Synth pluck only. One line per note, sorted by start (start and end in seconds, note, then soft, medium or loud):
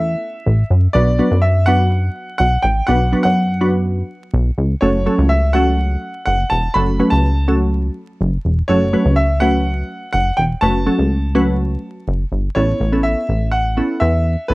0.00 0.37 A3 medium
0.00 0.37 B3 medium
0.00 0.37 C#4 medium
0.00 0.37 E4 medium
0.00 0.37 A4 medium
0.95 1.11 F#3 medium
0.95 1.11 B3 medium
0.95 1.11 D4 medium
0.95 1.11 F#4 medium
0.95 1.11 B4 medium
1.19 1.50 F#3 medium
1.19 1.50 B3 medium
1.19 1.51 D4 medium
1.19 1.51 F#4 medium
1.19 1.51 B4 medium
1.67 2.30 F#3 medium
1.67 2.30 B3 medium
1.67 2.31 D4 medium
1.67 2.31 F#4 medium
1.67 2.31 B4 medium
2.88 3.04 F#3 medium
2.88 3.04 B3 medium
2.88 3.04 D4 medium
2.88 3.04 F#4 medium
2.88 3.04 B4 medium
3.12 3.44 F#3 medium
3.12 3.44 B3 medium
3.12 3.44 D4 medium
3.12 3.44 F#4 medium
3.12 3.44 B4 medium
3.61 4.24 F#3 medium
3.61 4.24 B3 medium
3.61 4.24 D4 medium
3.61 4.24 F#4 medium
3.61 4.24 B4 medium
4.82 4.98 F#3 medium
4.82 4.98 A3 medium
4.82 4.98 C#4 medium
4.82 4.98 F#4 medium
4.82 4.98 A4 medium
5.06 5.38 F#3 medium
5.06 5.38 A3 medium
5.06 5.38 C#4 medium
5.06 5.38 F#4 medium
5.06 5.38 A4 medium
5.54 6.17 F#3 medium
5.54 6.18 A3 medium
5.54 6.18 C#4 medium
5.54 6.18 F#4 medium
5.54 6.18 A4 medium
6.75 6.91 F#3 medium
6.75 6.91 A3 medium
6.75 6.91 C#4 medium
6.75 6.91 F#4 medium
6.75 6.91 A4 medium
6.99 7.31 F#3 medium
6.99 7.31 A3 medium
6.99 7.31 C#4 medium
6.99 7.31 F#4 medium
6.99 7.31 B4 medium
7.48 8.11 F#3 medium
7.48 8.11 A3 medium
7.48 8.11 C#4 medium
7.48 8.11 F#4 medium
7.48 8.11 A4 medium
8.69 8.85 F#3 medium
8.69 8.85 A3 medium
8.69 8.85 C#4 medium
8.69 8.85 F#4 medium
8.69 8.85 A4 medium
8.93 9.25 F#3 medium
8.93 9.25 A3 medium
8.93 9.25 C#4 medium
8.93 9.25 F#4 medium
8.93 9.25 B4 medium
9.41 10.04 F#3 medium
9.41 10.05 A3 medium
9.41 10.05 C#4 medium
9.41 10.05 F#4 medium
9.41 10.05 B4 medium
10.62 10.78 F#3 medium
10.62 10.78 A3 medium
10.62 10.78 C#4 medium
10.62 10.78 F#4 medium
10.62 10.79 B4 medium
10.87 11.18 F#3 medium
10.87 11.18 A3 medium
10.87 11.18 C#4 medium
10.87 11.18 F#4 medium
10.87 11.18 A4 medium
11.35 11.98 F#3 loud
11.35 11.98 A3 medium
11.35 11.98 C#4 medium
11.35 11.98 F#4 medium
11.35 11.98 B4 loud
12.56 12.80 B3 medium
12.56 12.80 C#4 medium
12.56 12.80 E4 medium
12.56 12.80 A4 medium
12.92 13.48 B3 medium
12.92 13.48 C#4 medium
12.92 13.48 E4 medium
12.92 13.48 A4 medium
13.77 14.24 B3 medium
13.77 14.24 C#4 medium
13.77 14.24 E4 medium
13.77 14.25 A4 medium
14.49 14.54 B3 medium
14.49 14.54 C#4 medium
14.49 14.54 E4 medium
14.49 14.54 A4 medium